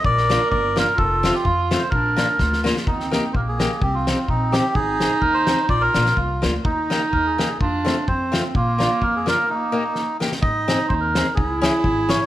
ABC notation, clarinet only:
X:1
M:2/4
L:1/8
Q:"Swing" 1/4=128
K:Bb
V:1 name="Clarinet"
B4 | F4 | D2 F2 | [K:Eb] C2 B,2 |
C2 C2 | E4 | F3 z | E4 |
D2 C2 | B,4 | B,3 z | [K:Ab] E4 |
_F4 |]